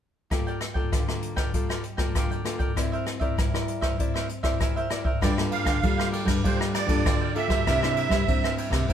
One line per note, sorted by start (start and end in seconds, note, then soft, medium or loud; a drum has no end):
0.30 0.90 G3 medium
0.30 0.60 A#3 soft
0.30 0.45 F4 soft
0.30 0.61 F4 soft
0.30 0.61 A4 medium
0.30 0.45 A#4 soft
0.30 0.46 D5 soft
0.30 0.46 G5 soft
0.30 kick medium
0.30 cross-stick medium
0.30 closed hi-hat soft
0.47 0.60 A#4 soft
0.47 0.60 D5 medium
0.47 0.61 G5 medium
0.47 closed hi-hat soft
0.61 muted cavaquinho stroke soft
0.61 cross-stick medium
0.61 closed hi-hat soft
0.74 1.02 A#3 soft
0.74 1.03 F4 medium
0.74 1.03 A4 medium
0.74 0.91 A#4 soft
0.74 0.91 D5 medium
0.74 0.90 G5 medium
0.74 kick medium
0.92 1.51 D3 medium
0.92 1.37 F4 soft
0.92 1.38 A#4 soft
0.92 1.36 D5 soft
0.92 1.35 G5 soft
0.92 kick medium
0.92 cross-stick soft
0.92 closed hi-hat medium
1.08 1.50 A#3 medium
1.08 1.50 F4 soft
1.08 1.50 A4 medium
1.08 cross-stick medium
1.08 closed hi-hat soft
1.22 closed hi-hat soft
1.36 1.53 A#4 soft
1.36 1.52 D5 medium
1.36 1.52 G5 medium
1.36 kick medium
1.36 cross-stick medium
1.54 2.12 G3 medium
1.54 1.83 A#3 soft
1.54 1.68 F4 soft
1.54 1.83 F4 soft
1.54 1.83 A4 medium
1.54 1.69 A#4 soft
1.54 1.69 D5 soft
1.54 1.68 G5 soft
1.54 kick medium
1.54 closed hi-hat medium
1.69 1.83 A#4 soft
1.69 1.83 D5 soft
1.69 1.83 G5 medium
1.69 cross-stick medium
1.69 closed hi-hat soft
1.83 muted cavaquinho stroke soft
1.83 closed hi-hat soft
1.97 2.40 A#3 soft
1.97 2.41 F4 medium
1.97 2.41 A4 medium
1.97 2.14 A#4 soft
1.97 2.14 D5 soft
1.97 2.13 G5 soft
1.97 kick medium
1.97 cross-stick medium
1.97 closed hi-hat soft
2.15 2.74 D3 medium
2.15 2.29 F4 medium
2.15 2.30 A#4 medium
2.15 2.30 D5 medium
2.15 2.30 G5 medium
2.15 kick medium
2.15 cross-stick medium
2.15 closed hi-hat medium
2.31 2.44 A#4 soft
2.31 2.45 D5 soft
2.31 2.45 G5 medium
2.31 closed hi-hat soft
2.45 2.71 A#3 soft
2.45 2.60 F4 soft
2.45 2.72 F4 soft
2.45 2.72 A4 medium
2.45 2.60 A#4 soft
2.45 2.59 D5 soft
2.45 2.58 G5 soft
2.45 cross-stick medium
2.45 closed hi-hat soft
2.59 2.76 A#4 soft
2.59 2.75 D5 medium
2.59 2.74 G5 medium
2.59 kick medium
2.59 closed hi-hat soft
2.76 3.35 C4 medium
2.76 2.91 E4 soft
2.76 3.18 E4 soft
2.76 2.91 A#4 soft
2.76 3.18 A#4 soft
2.76 2.91 C5 soft
2.76 3.18 D5 soft
2.76 2.91 E5 soft
2.76 kick medium
2.76 cross-stick medium
2.76 closed hi-hat medium
2.92 3.05 A#4 soft
2.92 3.06 C5 medium
2.92 3.06 E5 medium
2.92 closed hi-hat soft
3.06 muted cavaquinho stroke soft
3.06 cross-stick medium
3.06 closed hi-hat soft
3.19 3.48 E4 soft
3.19 3.48 A#4 soft
3.19 3.37 A#4 soft
3.19 3.36 C5 medium
3.19 3.48 D5 medium
3.19 3.35 E5 medium
3.19 kick soft
3.19 closed hi-hat soft
3.37 3.96 G3 medium
3.37 3.82 E4 soft
3.37 3.82 A#4 soft
3.37 3.81 C5 soft
3.37 3.80 E5 soft
3.37 kick medium
3.37 cross-stick medium
3.37 closed hi-hat medium
3.54 3.95 E4 medium
3.54 3.95 A#4 medium
3.54 3.95 D5 medium
3.54 cross-stick medium
3.54 closed hi-hat soft
3.68 closed hi-hat soft
3.81 3.98 A#4 soft
3.81 3.97 C5 medium
3.81 3.97 E5 medium
3.81 kick medium
3.81 cross-stick medium
3.98 4.58 C4 medium
3.98 4.13 E4 soft
3.98 4.28 E4 soft
3.98 4.13 A#4 soft
3.98 4.29 A#4 soft
3.98 4.14 C5 soft
3.98 4.29 D5 medium
3.98 4.13 E5 soft
3.98 kick medium
3.98 closed hi-hat medium
4.14 4.28 A#4 soft
4.14 4.28 C5 soft
4.14 4.29 E5 soft
4.14 cross-stick medium
4.14 closed hi-hat soft
4.29 muted cavaquinho stroke soft
4.29 closed hi-hat soft
4.43 4.86 E4 medium
4.43 4.86 A#4 medium
4.43 4.60 A#4 soft
4.43 4.59 C5 medium
4.43 4.86 D5 medium
4.43 4.58 E5 medium
4.43 kick medium
4.43 cross-stick medium
4.43 closed hi-hat soft
4.60 5.20 G3 medium
4.60 4.75 E4 medium
4.60 4.75 A#4 medium
4.60 4.75 C5 medium
4.60 4.75 E5 medium
4.60 kick medium
4.60 cross-stick medium
4.60 closed hi-hat soft
4.76 4.89 A#4 soft
4.76 4.90 C5 medium
4.76 4.90 E5 medium
4.76 closed hi-hat soft
4.90 5.05 E4 soft
4.90 5.09 E4 soft
4.90 5.05 A#4 soft
4.90 5.09 A#4 medium
4.90 5.04 C5 soft
4.90 5.10 D5 medium
4.90 5.03 E5 soft
4.90 cross-stick medium
4.90 closed hi-hat soft
5.04 5.21 A#4 soft
5.04 5.20 C5 medium
5.04 5.20 E5 medium
5.04 kick medium
5.21 5.61 G2 medium
5.21 5.80 G3 soft
5.21 5.32 A#3 medium
5.21 5.50 F4 medium
5.21 5.32 F4 soft
5.21 5.32 A4 medium
5.21 5.50 A#4 medium
5.21 5.36 D5 medium
5.21 5.51 D5 medium
5.21 5.52 G5 medium
5.21 kick medium
5.21 cross-stick medium
5.21 ride soft
5.38 5.79 A#3 medium
5.38 5.79 F4 medium
5.38 5.79 A4 medium
5.38 cross-stick medium
5.51 5.63 F4 soft
5.51 5.64 A#4 soft
5.51 5.64 D5 soft
5.51 6.09 F5 medium
5.51 5.65 G5 soft
5.51 ride soft
5.64 5.79 D3 medium
5.64 5.75 F4 medium
5.64 5.76 A#4 medium
5.64 5.76 D5 medium
5.64 5.76 G5 medium
5.64 kick medium
5.64 cross-stick medium
5.64 ride soft
5.83 6.42 D3 soft
5.83 6.22 G3 medium
5.83 6.23 A#3 medium
5.83 6.23 F4 soft
5.83 6.23 A4 medium
5.83 kick medium
5.83 ride soft
5.98 6.11 A#4 soft
5.98 6.12 D5 soft
5.98 6.12 G5 soft
5.98 cross-stick medium
6.11 6.27 F4 medium
6.11 6.27 A#4 medium
6.11 6.26 D5 medium
6.11 6.25 G5 medium
6.11 ride soft
6.25 6.40 G2 medium
6.25 6.43 A#4 soft
6.25 6.42 D5 soft
6.25 6.42 G5 soft
6.25 kick medium
6.25 cross-stick medium
6.25 ride soft
6.43 7.03 G3 medium
6.43 6.84 G3 medium
6.43 6.86 A#3 medium
6.43 6.72 F4 medium
6.43 6.86 F4 soft
6.43 6.86 A4 soft
6.43 6.73 A#4 medium
6.43 6.58 C5 medium
6.43 6.73 D5 medium
6.43 6.74 G5 medium
6.43 kick medium
6.43 ride soft
6.61 cross-stick medium
6.73 7.04 F4 soft
6.73 7.04 A#4 soft
6.73 7.32 D5 medium
6.73 7.04 D5 soft
6.73 7.05 G5 soft
6.73 cross-stick medium
6.73 ride soft
6.87 7.01 G2 medium
6.87 7.30 A#3 medium
6.87 7.31 F4 medium
6.87 7.31 A4 medium
6.87 kick medium
6.87 ride soft
7.05 7.32 D3 medium
7.05 7.64 D3 soft
7.05 7.14 F4 medium
7.05 7.15 A#4 medium
7.05 7.15 D5 medium
7.05 7.15 G5 medium
7.05 kick medium
7.05 cross-stick medium
7.05 ride soft
7.21 7.34 A#4 soft
7.21 7.35 D5 soft
7.21 7.35 G5 soft
7.35 7.64 A#3 medium
7.35 7.50 F4 medium
7.35 7.64 F4 medium
7.35 7.64 A4 medium
7.35 7.50 A#4 medium
7.35 7.49 D5 medium
7.35 8.55 E5 loud
7.35 7.48 G5 medium
7.35 ride soft
7.48 7.62 G3 medium
7.48 7.65 D5 soft
7.48 7.65 G5 soft
7.48 kick medium
7.48 cross-stick medium
7.48 ride soft
7.52 7.66 A#4 soft
7.67 8.25 C3 medium
7.67 8.06 C3 medium
7.67 7.76 A#3 soft
7.67 7.76 D4 soft
7.67 7.95 E4 medium
7.67 7.76 E4 medium
7.67 7.96 A#4 medium
7.67 7.96 C5 medium
7.67 7.97 E5 medium
7.67 kick medium
7.67 cross-stick medium
7.67 ride soft
7.83 8.24 A#3 medium
7.83 8.24 D4 medium
7.83 8.24 E4 medium
7.83 cross-stick medium
7.96 8.10 E4 soft
7.96 8.10 A#4 medium
7.96 8.10 C5 soft
7.96 8.11 E5 medium
7.96 ride soft
8.09 8.24 G3 medium
8.09 8.21 E4 medium
8.09 8.21 A#4 medium
8.09 8.21 C5 medium
8.09 8.21 E5 medium
8.09 kick medium
8.09 cross-stick medium
8.09 ride soft
8.28 8.86 G3 soft
8.28 8.85 A#3 medium
8.28 8.67 C4 medium
8.28 8.85 D4 medium
8.28 8.85 E4 medium
8.28 kick medium
8.28 ride soft
8.43 8.56 A#4 soft
8.43 8.57 C5 soft
8.43 8.57 E5 soft
8.43 cross-stick medium
8.57 8.72 E4 medium
8.57 8.72 A#4 medium
8.57 8.71 C5 medium
8.57 8.69 E5 medium
8.57 ride soft
8.70 8.85 C3 medium
8.70 8.88 A#4 soft
8.70 8.87 C5 soft
8.70 8.86 E5 soft
8.70 kick medium
8.70 cross-stick medium
8.70 ride soft
8.88 8.93 C3 medium
8.88 8.93 A#3 medium
8.88 8.93 C4 medium
8.88 8.93 D4 soft
8.88 8.93 E4 medium
8.88 8.93 A#4 medium
8.88 8.93 C5 medium
8.88 kick medium
8.88 ride soft